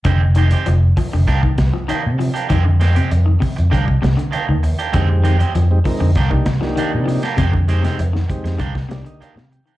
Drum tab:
HH |x-xxx-o-x-x-x-ox|x-xxx-oxx-xxx-ox|x-xxx-o-x-x-x-ox|x-xxx-xxx-xxx-xx|
SD |--------o-o-----|--o-------o-----|--------o-oo---o|---o-o-o-oo--o--|
BD |o-----o-ooo-----|o-----o-ooo-----|o-----o-ooo-----|oo----o-oo------|